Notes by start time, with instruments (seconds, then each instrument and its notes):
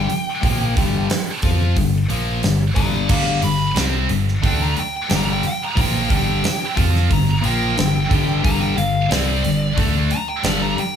Already playing: lead electric guitar G5
0.09 muted distorted electric guitar stroke, muted overdriven electric guitar stroke, muted picked electric bass stroke, open hi-hat
0.42 picked electric bass A#1, overdriven electric guitar A#2 F3 A#3, kick, open hi-hat
0.75 picked electric bass G1, overdriven electric guitar G2 D3 G3, kick, open hi-hat
1.09 muted distorted electric guitar stroke, muted overdriven electric guitar stroke, muted picked electric bass stroke, snare, open hi-hat
1.42 picked electric bass F2, overdriven electric guitar F3 C4 F4, kick, open hi-hat
1.76 picked electric bass G1, overdriven electric guitar G2 D3, kick, open hi-hat
2.10 picked electric bass A#1, overdriven electric guitar A#2 F3 A#3, open hi-hat
2.43 picked electric bass G1, overdriven electric guitar G2 D3, snare, open hi-hat
2.75 picked electric bass G1, overdriven electric guitar G2 D3 G3, lead electric guitar D5 A#5, kick, open hi-hat
3.09 picked electric bass G1, overdriven electric guitar G2 D3 G3, lead electric guitar F5 D6, kick, crash
3.42 picked electric bass G1, overdriven electric guitar G2 D3, lead electric guitar B5, open hi-hat
3.75 picked electric bass C2, overdriven electric guitar C3 G3 C4, snare, open hi-hat
4.09 picked electric bass G1, overdriven electric guitar G2 D3, open hi-hat
4.29 snare
4.43 picked electric bass D2, overdriven electric guitar D3 A3 D4, lead electric guitar G5, kick, open hi-hat
4.62 lead electric guitar A#5
4.76 lead electric guitar G5, muted overdriven electric guitar stroke, muted distorted electric guitar stroke, muted picked electric bass stroke, open hi-hat
4.97 lead electric guitar G5
5.10 picked electric bass G1, overdriven electric guitar G2 D3 G3, snare, open hi-hat
5.16 lead electric guitar A#5
5.33 lead electric guitar G5
5.43 muted overdriven electric guitar stroke, muted distorted electric guitar stroke, muted picked electric bass stroke, open hi-hat
5.48 lead electric guitar G5
5.64 lead electric guitar A#5
5.76 picked electric bass A#1, overdriven electric guitar A#2 F3 A#3, kick, open hi-hat
5.81 lead electric guitar G5
6.09 picked electric bass G1, overdriven electric guitar G2 D3 G3, kick, open hi-hat
6.16 lead electric guitar G5
6.43 muted distorted electric guitar stroke, muted picked electric bass stroke, muted overdriven electric guitar stroke, snare, open hi-hat
6.76 picked electric bass F2, overdriven electric guitar F3 C4 F4, kick, open hi-hat
6.96 snare
7.09 picked electric bass G1, overdriven electric guitar G2 D3, lead electric guitar A#5, kick, open hi-hat
7.41 picked electric bass A#1, overdriven electric guitar A#2 F3 A#3, lead electric guitar G5, open hi-hat
7.77 picked electric bass G1, overdriven electric guitar G2 D3, snare, open hi-hat
8.09 picked electric bass G1, overdriven electric guitar G2 D3 G3, kick, open hi-hat
8.41 picked electric bass G1, overdriven electric guitar G2 D3 G3, lead electric guitar A#5, kick, open hi-hat
8.60 lead electric guitar G5
8.76 picked electric bass G1, overdriven electric guitar G2 D3, lead electric guitar F5, open hi-hat
9.09 picked electric bass C2, overdriven electric guitar C3 G3 C4, lead electric guitar D5, snare, open hi-hat
9.43 picked electric bass G1, overdriven electric guitar G2 D3, open hi-hat
9.77 picked electric bass D2, overdriven electric guitar D3 A3 D4, kick, open hi-hat
10.10 lead electric guitar A#5, muted distorted electric guitar stroke, muted picked electric bass stroke, muted overdriven electric guitar stroke, open hi-hat
10.28 lead electric guitar G5
10.43 picked electric bass G1, overdriven electric guitar G2 D3 G3, lead electric guitar D5, snare, open hi-hat
10.62 lead electric guitar A#5
10.77 lead electric guitar G5, muted distorted electric guitar stroke, muted picked electric bass stroke, muted overdriven electric guitar stroke, open hi-hat